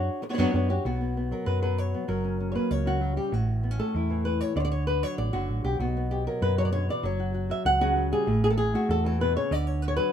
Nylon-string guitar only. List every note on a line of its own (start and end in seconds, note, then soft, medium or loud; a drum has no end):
0.00 0.22 D4 medium
0.00 0.22 F#4 medium
0.00 0.22 C#5 medium
0.22 muted nylon-string guitar stroke medium
0.29 0.32 B3 medium
0.29 0.33 D4 medium
0.29 0.33 F#4 medium
0.29 0.34 C#5 medium
0.33 0.37 B3 medium
0.33 0.38 D4 medium
0.33 0.38 F#4 medium
0.33 0.38 C#5 medium
0.38 0.53 F#3 medium
0.38 0.52 B3 medium
0.38 0.53 D4 medium
0.38 0.54 F#4 medium
0.38 0.54 C#5 medium
0.53 0.68 B3 medium
0.53 0.69 D4 medium
0.53 0.69 F#4 medium
0.53 0.68 C#5 medium
0.69 0.85 D4 soft
0.69 0.85 F#4 medium
0.69 0.85 G4 medium
0.69 0.84 C#5 medium
0.85 2.07 B2 medium
0.85 1.31 F#3 medium
0.85 1.00 B3 medium
0.85 1.32 F#4 medium
1.01 1.16 B3 soft
1.17 1.93 B3 medium
1.31 1.61 F#3 medium
1.31 1.78 A#4 medium
1.46 1.61 B4 loud
1.62 2.07 F#3 medium
1.62 1.78 B4 medium
1.78 2.08 C#5 medium
1.94 2.09 B3 soft
2.08 3.00 F#3 medium
2.08 2.51 A#4 medium
2.24 2.40 C#4 soft
2.40 3.31 C#4 medium
2.52 3.01 A#3 medium
2.52 2.71 B4 medium
2.52 2.55 C#5 medium
2.71 3.17 C#5 medium
2.86 3.30 C#3 medium
2.86 3.17 F#4 medium
3.01 3.16 F#3 medium
3.16 3.32 G3 medium
3.16 3.34 G4 medium
3.32 4.54 A2 medium
3.32 3.95 F#4 medium
3.63 3.71 B3 medium
3.71 4.56 C#4 soft
3.79 4.55 A3 medium
3.79 4.25 A4 medium
3.96 4.55 E4 medium
4.10 4.54 E3 medium
4.25 4.41 B4 medium
4.41 4.56 C#5 medium
4.56 5.32 D3 medium
4.56 4.64 C#5 medium
4.56 4.60 D5 loud
4.65 4.71 D5 loud
4.72 4.87 C#5 loud
4.87 5.03 B4 loud
5.03 6.27 F#3 medium
5.03 5.18 C#5 medium
5.18 5.65 D5 loud
5.33 5.78 D3 medium
5.33 5.64 F#4 loud
5.65 5.80 G4 loud
5.80 7.02 B2 medium
5.80 6.11 F#4 medium
5.97 7.05 B3 soft
6.11 6.27 G4 medium
6.27 6.57 F#3 medium
6.27 6.73 A#4 medium
6.42 6.58 B4 loud
6.58 6.73 F#3 medium
6.58 6.64 C#5 loud
6.65 6.72 D5 medium
6.72 6.88 D3 medium
6.72 6.89 C#5 loud
6.89 7.04 E3 medium
6.89 7.05 D5 loud
7.03 7.95 F#3 medium
7.03 7.82 C#5 medium
7.20 7.33 F#4 soft
7.34 7.48 F#4 medium
7.50 7.80 F#4 medium
7.50 7.66 E5 loud
7.66 8.12 F#5 loud
7.81 8.27 C#3 medium
7.81 8.28 F#4 loud
7.96 8.11 F#3 medium
8.12 8.27 G3 medium
8.12 8.43 G#4 loud
8.27 9.20 A2 medium
8.44 8.50 G#4 loud
8.50 8.57 A4 medium
8.58 8.90 G#4 loud
8.74 9.49 A3 medium
8.74 9.21 F#4 loud
8.91 9.05 A4 loud
9.05 9.35 E3 medium
9.05 9.21 A4 loud
9.20 9.36 B2 medium
9.20 9.36 B4 loud
9.36 9.51 C#3 medium
9.36 9.52 C#5 loud
9.51 10.11 D3 medium
9.51 9.67 D5 loud
9.67 9.82 C#5 medium
9.82 9.88 B4 loud
9.88 9.95 C#5 medium
9.96 10.11 F#3 medium
9.96 10.12 B4 loud